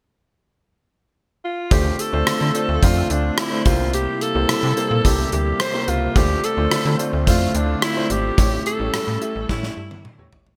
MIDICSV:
0, 0, Header, 1, 6, 480
1, 0, Start_track
1, 0, Key_signature, -1, "minor"
1, 0, Tempo, 555556
1, 1481, Time_signature, 4, 2, 24, 8
1, 9125, End_track
2, 0, Start_track
2, 0, Title_t, "Alto saxophone"
2, 0, Program_c, 0, 65
2, 1251, Note_on_c, 0, 65, 75
2, 1469, Note_off_c, 0, 65, 0
2, 1490, Note_on_c, 0, 67, 85
2, 1729, Note_on_c, 0, 69, 84
2, 1742, Note_off_c, 0, 67, 0
2, 2449, Note_on_c, 0, 65, 88
2, 2462, Note_off_c, 0, 69, 0
2, 2688, Note_on_c, 0, 62, 76
2, 2701, Note_off_c, 0, 65, 0
2, 2927, Note_on_c, 0, 64, 87
2, 2940, Note_off_c, 0, 62, 0
2, 3169, Note_on_c, 0, 65, 86
2, 3182, Note_off_c, 0, 64, 0
2, 3400, Note_off_c, 0, 65, 0
2, 3406, Note_on_c, 0, 67, 95
2, 3645, Note_on_c, 0, 69, 95
2, 3658, Note_off_c, 0, 67, 0
2, 4365, Note_on_c, 0, 67, 93
2, 4378, Note_off_c, 0, 69, 0
2, 4601, Note_off_c, 0, 67, 0
2, 4606, Note_on_c, 0, 67, 88
2, 4846, Note_on_c, 0, 72, 105
2, 4859, Note_off_c, 0, 67, 0
2, 5086, Note_on_c, 0, 65, 92
2, 5099, Note_off_c, 0, 72, 0
2, 5327, Note_on_c, 0, 67, 97
2, 5340, Note_off_c, 0, 65, 0
2, 5568, Note_on_c, 0, 69, 88
2, 5581, Note_off_c, 0, 67, 0
2, 6051, Note_off_c, 0, 69, 0
2, 6291, Note_on_c, 0, 65, 88
2, 6528, Note_on_c, 0, 62, 74
2, 6541, Note_off_c, 0, 65, 0
2, 6764, Note_off_c, 0, 62, 0
2, 6769, Note_on_c, 0, 64, 93
2, 7007, Note_on_c, 0, 67, 97
2, 7020, Note_off_c, 0, 64, 0
2, 7484, Note_off_c, 0, 67, 0
2, 7488, Note_on_c, 0, 69, 94
2, 8170, Note_off_c, 0, 69, 0
2, 8209, Note_on_c, 0, 64, 84
2, 8890, Note_off_c, 0, 64, 0
2, 9125, End_track
3, 0, Start_track
3, 0, Title_t, "Grand piano"
3, 0, Program_c, 1, 0
3, 1474, Note_on_c, 1, 57, 68
3, 1478, Note_on_c, 1, 62, 59
3, 1481, Note_on_c, 1, 50, 59
3, 1481, Note_on_c, 1, 65, 57
3, 1485, Note_on_c, 1, 72, 72
3, 1655, Control_c, 1, 64, 127
3, 1745, Note_off_c, 1, 57, 0
3, 1746, Note_off_c, 1, 62, 0
3, 1748, Note_off_c, 1, 65, 0
3, 1750, Note_off_c, 1, 72, 0
3, 1834, Note_on_c, 1, 57, 67
3, 1837, Note_on_c, 1, 62, 60
3, 1841, Note_on_c, 1, 65, 62
3, 1844, Note_on_c, 1, 72, 74
3, 2104, Note_off_c, 1, 57, 0
3, 2106, Note_off_c, 1, 62, 0
3, 2108, Note_off_c, 1, 65, 0
3, 2110, Note_off_c, 1, 72, 0
3, 2166, Note_off_c, 1, 50, 0
3, 2195, Note_on_c, 1, 57, 66
3, 2199, Note_on_c, 1, 62, 58
3, 2203, Note_on_c, 1, 65, 62
3, 2206, Note_on_c, 1, 72, 71
3, 2376, Note_off_c, 1, 57, 0
3, 2378, Note_off_c, 1, 62, 0
3, 2380, Note_off_c, 1, 65, 0
3, 2381, Note_off_c, 1, 72, 0
3, 2434, Note_on_c, 1, 57, 66
3, 2437, Note_on_c, 1, 62, 62
3, 2441, Note_on_c, 1, 65, 64
3, 2444, Note_on_c, 1, 72, 70
3, 2883, Note_off_c, 1, 57, 0
3, 2884, Note_off_c, 1, 62, 0
3, 2886, Note_off_c, 1, 65, 0
3, 2888, Note_off_c, 1, 72, 0
3, 3034, Note_on_c, 1, 57, 69
3, 3037, Note_on_c, 1, 62, 60
3, 3040, Note_on_c, 1, 65, 60
3, 3045, Note_on_c, 1, 72, 74
3, 3144, Note_off_c, 1, 62, 0
3, 3150, Note_off_c, 1, 72, 0
3, 3153, Note_on_c, 1, 58, 72
3, 3157, Note_off_c, 1, 57, 0
3, 3157, Note_on_c, 1, 62, 51
3, 3158, Note_on_c, 1, 48, 61
3, 3160, Note_off_c, 1, 65, 0
3, 3160, Note_on_c, 1, 67, 68
3, 3163, Note_on_c, 1, 72, 81
3, 3171, Control_c, 1, 64, 0
3, 3213, Note_on_c, 1, 64, 68
3, 3215, Note_off_c, 1, 62, 0
3, 3318, Control_c, 1, 64, 127
3, 3637, Note_off_c, 1, 58, 0
3, 3640, Note_off_c, 1, 67, 0
3, 3642, Note_off_c, 1, 72, 0
3, 3667, Note_off_c, 1, 64, 0
3, 3754, Note_on_c, 1, 58, 67
3, 3758, Note_on_c, 1, 64, 61
3, 3762, Note_on_c, 1, 67, 64
3, 3765, Note_on_c, 1, 72, 71
3, 3845, Note_off_c, 1, 48, 0
3, 4025, Note_off_c, 1, 58, 0
3, 4027, Note_off_c, 1, 64, 0
3, 4028, Note_off_c, 1, 67, 0
3, 4030, Note_off_c, 1, 72, 0
3, 4114, Note_on_c, 1, 58, 68
3, 4119, Note_on_c, 1, 64, 61
3, 4121, Note_on_c, 1, 67, 62
3, 4125, Note_on_c, 1, 72, 71
3, 4296, Note_off_c, 1, 58, 0
3, 4298, Note_off_c, 1, 64, 0
3, 4299, Note_off_c, 1, 67, 0
3, 4301, Note_off_c, 1, 72, 0
3, 4354, Note_on_c, 1, 58, 67
3, 4358, Note_on_c, 1, 64, 60
3, 4362, Note_on_c, 1, 67, 62
3, 4365, Note_on_c, 1, 69, 78
3, 4803, Note_off_c, 1, 58, 0
3, 4805, Note_off_c, 1, 64, 0
3, 4807, Note_off_c, 1, 67, 0
3, 4808, Note_off_c, 1, 69, 0
3, 4957, Note_on_c, 1, 58, 68
3, 4960, Note_on_c, 1, 64, 63
3, 4963, Note_on_c, 1, 67, 65
3, 4967, Note_on_c, 1, 72, 81
3, 5226, Note_off_c, 1, 58, 0
3, 5228, Note_off_c, 1, 64, 0
3, 5229, Note_off_c, 1, 67, 0
3, 5231, Note_off_c, 1, 72, 0
3, 5318, Note_on_c, 1, 57, 68
3, 5321, Note_on_c, 1, 62, 61
3, 5323, Note_on_c, 1, 50, 57
3, 5324, Note_on_c, 1, 65, 62
3, 5328, Note_on_c, 1, 72, 74
3, 5333, Control_c, 1, 64, 0
3, 5489, Control_c, 1, 64, 127
3, 5587, Note_off_c, 1, 57, 0
3, 5588, Note_off_c, 1, 62, 0
3, 5590, Note_off_c, 1, 65, 0
3, 5591, Note_off_c, 1, 72, 0
3, 5675, Note_on_c, 1, 57, 67
3, 5679, Note_on_c, 1, 62, 62
3, 5682, Note_on_c, 1, 65, 65
3, 5686, Note_on_c, 1, 72, 75
3, 5945, Note_off_c, 1, 57, 0
3, 5947, Note_off_c, 1, 62, 0
3, 5949, Note_off_c, 1, 65, 0
3, 5951, Note_off_c, 1, 72, 0
3, 6007, Note_off_c, 1, 50, 0
3, 6036, Note_on_c, 1, 57, 67
3, 6039, Note_on_c, 1, 62, 61
3, 6042, Note_on_c, 1, 65, 62
3, 6046, Note_on_c, 1, 72, 71
3, 6216, Note_off_c, 1, 57, 0
3, 6218, Note_off_c, 1, 62, 0
3, 6220, Note_off_c, 1, 65, 0
3, 6221, Note_off_c, 1, 72, 0
3, 6275, Note_on_c, 1, 57, 68
3, 6278, Note_on_c, 1, 62, 61
3, 6283, Note_on_c, 1, 64, 48
3, 6286, Note_on_c, 1, 72, 77
3, 6338, Note_off_c, 1, 64, 0
3, 6339, Note_on_c, 1, 65, 62
3, 6723, Note_off_c, 1, 57, 0
3, 6725, Note_off_c, 1, 62, 0
3, 6728, Note_off_c, 1, 72, 0
3, 6755, Note_off_c, 1, 65, 0
3, 6876, Note_on_c, 1, 57, 70
3, 6879, Note_on_c, 1, 62, 61
3, 6884, Note_on_c, 1, 65, 60
3, 6886, Note_on_c, 1, 72, 79
3, 7146, Note_off_c, 1, 57, 0
3, 7147, Note_off_c, 1, 62, 0
3, 7149, Note_off_c, 1, 65, 0
3, 7151, Note_off_c, 1, 72, 0
3, 7234, Note_on_c, 1, 57, 64
3, 7238, Note_on_c, 1, 64, 58
3, 7240, Note_on_c, 1, 45, 58
3, 7242, Note_on_c, 1, 67, 60
3, 7245, Note_on_c, 1, 73, 77
3, 7251, Control_c, 1, 64, 0
3, 7416, Control_c, 1, 64, 127
3, 7505, Note_off_c, 1, 57, 0
3, 7507, Note_off_c, 1, 64, 0
3, 7508, Note_off_c, 1, 67, 0
3, 7510, Note_off_c, 1, 73, 0
3, 7597, Note_on_c, 1, 57, 71
3, 7601, Note_on_c, 1, 64, 61
3, 7603, Note_on_c, 1, 67, 62
3, 7607, Note_on_c, 1, 73, 70
3, 7866, Note_off_c, 1, 57, 0
3, 7868, Note_off_c, 1, 64, 0
3, 7869, Note_off_c, 1, 67, 0
3, 7871, Note_off_c, 1, 73, 0
3, 7925, Note_off_c, 1, 45, 0
3, 7955, Note_on_c, 1, 57, 69
3, 7958, Note_on_c, 1, 64, 58
3, 7962, Note_on_c, 1, 67, 61
3, 7965, Note_on_c, 1, 76, 72
3, 8136, Note_off_c, 1, 57, 0
3, 8138, Note_off_c, 1, 64, 0
3, 8139, Note_off_c, 1, 67, 0
3, 8141, Note_off_c, 1, 76, 0
3, 8196, Note_on_c, 1, 57, 68
3, 8199, Note_on_c, 1, 64, 59
3, 8203, Note_on_c, 1, 67, 62
3, 8206, Note_on_c, 1, 73, 73
3, 8644, Note_off_c, 1, 57, 0
3, 8645, Note_off_c, 1, 64, 0
3, 8647, Note_off_c, 1, 67, 0
3, 8649, Note_off_c, 1, 73, 0
3, 8796, Note_on_c, 1, 57, 77
3, 8800, Note_on_c, 1, 64, 78
3, 8803, Note_on_c, 1, 67, 74
3, 8807, Note_on_c, 1, 73, 87
3, 9066, Note_off_c, 1, 57, 0
3, 9067, Note_off_c, 1, 64, 0
3, 9069, Note_off_c, 1, 67, 0
3, 9071, Note_off_c, 1, 73, 0
3, 9125, End_track
4, 0, Start_track
4, 0, Title_t, "Analog synth pad"
4, 0, Program_c, 2, 89
4, 1481, Note_on_c, 2, 57, 72
4, 1481, Note_on_c, 2, 60, 75
4, 1481, Note_on_c, 2, 65, 88
4, 1482, Note_on_c, 2, 50, 81
4, 3144, Note_off_c, 2, 57, 0
4, 3144, Note_off_c, 2, 60, 0
4, 3144, Note_off_c, 2, 65, 0
4, 3145, Note_off_c, 2, 50, 0
4, 3157, Note_on_c, 2, 48, 80
4, 3158, Note_on_c, 2, 55, 71
4, 3159, Note_on_c, 2, 58, 69
4, 3160, Note_on_c, 2, 64, 82
4, 5297, Note_off_c, 2, 48, 0
4, 5298, Note_off_c, 2, 55, 0
4, 5298, Note_off_c, 2, 58, 0
4, 5299, Note_off_c, 2, 64, 0
4, 5322, Note_on_c, 2, 57, 77
4, 5323, Note_on_c, 2, 60, 76
4, 5323, Note_on_c, 2, 65, 89
4, 5324, Note_on_c, 2, 50, 79
4, 7222, Note_off_c, 2, 65, 0
4, 7223, Note_off_c, 2, 50, 0
4, 7223, Note_off_c, 2, 60, 0
4, 7239, Note_on_c, 2, 61, 87
4, 7241, Note_on_c, 2, 55, 80
4, 9125, Note_off_c, 2, 55, 0
4, 9125, Note_off_c, 2, 57, 0
4, 9125, Note_off_c, 2, 61, 0
4, 9125, End_track
5, 0, Start_track
5, 0, Title_t, "FM bass"
5, 0, Program_c, 3, 39
5, 1480, Note_on_c, 3, 38, 107
5, 1660, Note_off_c, 3, 38, 0
5, 1842, Note_on_c, 3, 38, 94
5, 1931, Note_off_c, 3, 38, 0
5, 1962, Note_on_c, 3, 50, 43
5, 2009, Note_off_c, 3, 50, 0
5, 2082, Note_on_c, 3, 50, 93
5, 2171, Note_off_c, 3, 50, 0
5, 2321, Note_on_c, 3, 38, 88
5, 2411, Note_off_c, 3, 38, 0
5, 2442, Note_on_c, 3, 41, 108
5, 2621, Note_off_c, 3, 41, 0
5, 2680, Note_on_c, 3, 38, 88
5, 2860, Note_off_c, 3, 38, 0
5, 3160, Note_on_c, 3, 36, 89
5, 3520, Note_off_c, 3, 36, 0
5, 3760, Note_on_c, 3, 36, 90
5, 3850, Note_off_c, 3, 36, 0
5, 3880, Note_on_c, 3, 48, 46
5, 3928, Note_off_c, 3, 48, 0
5, 4000, Note_on_c, 3, 48, 101
5, 4090, Note_off_c, 3, 48, 0
5, 4241, Note_on_c, 3, 46, 88
5, 4331, Note_off_c, 3, 46, 0
5, 4362, Note_on_c, 3, 36, 97
5, 4541, Note_off_c, 3, 36, 0
5, 4601, Note_on_c, 3, 38, 91
5, 4781, Note_off_c, 3, 38, 0
5, 5081, Note_on_c, 3, 37, 75
5, 5261, Note_off_c, 3, 37, 0
5, 5320, Note_on_c, 3, 38, 107
5, 5500, Note_off_c, 3, 38, 0
5, 5680, Note_on_c, 3, 38, 90
5, 5770, Note_off_c, 3, 38, 0
5, 5802, Note_on_c, 3, 50, 45
5, 5850, Note_off_c, 3, 50, 0
5, 5922, Note_on_c, 3, 50, 99
5, 6011, Note_off_c, 3, 50, 0
5, 6161, Note_on_c, 3, 38, 88
5, 6283, Note_on_c, 3, 41, 99
5, 6296, Note_off_c, 3, 38, 0
5, 6462, Note_off_c, 3, 41, 0
5, 6520, Note_on_c, 3, 38, 94
5, 6700, Note_off_c, 3, 38, 0
5, 7001, Note_on_c, 3, 32, 87
5, 7181, Note_off_c, 3, 32, 0
5, 7241, Note_on_c, 3, 33, 113
5, 7421, Note_off_c, 3, 33, 0
5, 7601, Note_on_c, 3, 33, 90
5, 7691, Note_off_c, 3, 33, 0
5, 7722, Note_on_c, 3, 45, 46
5, 7769, Note_off_c, 3, 45, 0
5, 7842, Note_on_c, 3, 45, 94
5, 7931, Note_off_c, 3, 45, 0
5, 8083, Note_on_c, 3, 33, 90
5, 8172, Note_off_c, 3, 33, 0
5, 8203, Note_on_c, 3, 45, 107
5, 8382, Note_off_c, 3, 45, 0
5, 8441, Note_on_c, 3, 43, 89
5, 8711, Note_off_c, 3, 43, 0
5, 8802, Note_on_c, 3, 40, 88
5, 8891, Note_off_c, 3, 40, 0
5, 8921, Note_on_c, 3, 32, 92
5, 9101, Note_off_c, 3, 32, 0
5, 9125, End_track
6, 0, Start_track
6, 0, Title_t, "Drums"
6, 1480, Note_on_c, 9, 36, 101
6, 1480, Note_on_c, 9, 42, 77
6, 1566, Note_off_c, 9, 36, 0
6, 1566, Note_off_c, 9, 42, 0
6, 1721, Note_on_c, 9, 42, 69
6, 1807, Note_off_c, 9, 42, 0
6, 1960, Note_on_c, 9, 37, 89
6, 1961, Note_on_c, 9, 42, 80
6, 2047, Note_off_c, 9, 37, 0
6, 2048, Note_off_c, 9, 42, 0
6, 2201, Note_on_c, 9, 42, 64
6, 2288, Note_off_c, 9, 42, 0
6, 2441, Note_on_c, 9, 36, 83
6, 2443, Note_on_c, 9, 42, 91
6, 2528, Note_off_c, 9, 36, 0
6, 2529, Note_off_c, 9, 42, 0
6, 2679, Note_on_c, 9, 42, 62
6, 2765, Note_off_c, 9, 42, 0
6, 2917, Note_on_c, 9, 37, 114
6, 2921, Note_on_c, 9, 42, 87
6, 3004, Note_off_c, 9, 37, 0
6, 3007, Note_off_c, 9, 42, 0
6, 3158, Note_on_c, 9, 42, 62
6, 3160, Note_on_c, 9, 36, 100
6, 3244, Note_off_c, 9, 42, 0
6, 3246, Note_off_c, 9, 36, 0
6, 3399, Note_on_c, 9, 42, 78
6, 3486, Note_off_c, 9, 42, 0
6, 3641, Note_on_c, 9, 42, 75
6, 3728, Note_off_c, 9, 42, 0
6, 3880, Note_on_c, 9, 37, 95
6, 3881, Note_on_c, 9, 42, 81
6, 3967, Note_off_c, 9, 37, 0
6, 3968, Note_off_c, 9, 42, 0
6, 4121, Note_on_c, 9, 42, 66
6, 4208, Note_off_c, 9, 42, 0
6, 4362, Note_on_c, 9, 36, 89
6, 4363, Note_on_c, 9, 42, 92
6, 4448, Note_off_c, 9, 36, 0
6, 4450, Note_off_c, 9, 42, 0
6, 4599, Note_on_c, 9, 42, 63
6, 4686, Note_off_c, 9, 42, 0
6, 4837, Note_on_c, 9, 37, 111
6, 4841, Note_on_c, 9, 42, 93
6, 4924, Note_off_c, 9, 37, 0
6, 4927, Note_off_c, 9, 42, 0
6, 5079, Note_on_c, 9, 42, 66
6, 5165, Note_off_c, 9, 42, 0
6, 5320, Note_on_c, 9, 36, 98
6, 5320, Note_on_c, 9, 42, 75
6, 5406, Note_off_c, 9, 42, 0
6, 5407, Note_off_c, 9, 36, 0
6, 5561, Note_on_c, 9, 42, 77
6, 5648, Note_off_c, 9, 42, 0
6, 5802, Note_on_c, 9, 37, 94
6, 5803, Note_on_c, 9, 42, 78
6, 5888, Note_off_c, 9, 37, 0
6, 5889, Note_off_c, 9, 42, 0
6, 6043, Note_on_c, 9, 42, 64
6, 6129, Note_off_c, 9, 42, 0
6, 6283, Note_on_c, 9, 36, 84
6, 6284, Note_on_c, 9, 42, 92
6, 6369, Note_off_c, 9, 36, 0
6, 6370, Note_off_c, 9, 42, 0
6, 6519, Note_on_c, 9, 42, 62
6, 6606, Note_off_c, 9, 42, 0
6, 6759, Note_on_c, 9, 37, 113
6, 6763, Note_on_c, 9, 42, 92
6, 6846, Note_off_c, 9, 37, 0
6, 6849, Note_off_c, 9, 42, 0
6, 6999, Note_on_c, 9, 42, 63
6, 7085, Note_off_c, 9, 42, 0
6, 7241, Note_on_c, 9, 36, 99
6, 7242, Note_on_c, 9, 42, 80
6, 7327, Note_off_c, 9, 36, 0
6, 7328, Note_off_c, 9, 42, 0
6, 7482, Note_on_c, 9, 42, 75
6, 7568, Note_off_c, 9, 42, 0
6, 7721, Note_on_c, 9, 37, 96
6, 7722, Note_on_c, 9, 42, 80
6, 7808, Note_off_c, 9, 37, 0
6, 7809, Note_off_c, 9, 42, 0
6, 7963, Note_on_c, 9, 42, 62
6, 8049, Note_off_c, 9, 42, 0
6, 8202, Note_on_c, 9, 38, 53
6, 8203, Note_on_c, 9, 36, 86
6, 8289, Note_off_c, 9, 36, 0
6, 8289, Note_off_c, 9, 38, 0
6, 8322, Note_on_c, 9, 38, 50
6, 8408, Note_off_c, 9, 38, 0
6, 8563, Note_on_c, 9, 48, 59
6, 8649, Note_off_c, 9, 48, 0
6, 8683, Note_on_c, 9, 47, 77
6, 8769, Note_off_c, 9, 47, 0
6, 8921, Note_on_c, 9, 43, 91
6, 9008, Note_off_c, 9, 43, 0
6, 9042, Note_on_c, 9, 43, 84
6, 9125, Note_off_c, 9, 43, 0
6, 9125, End_track
0, 0, End_of_file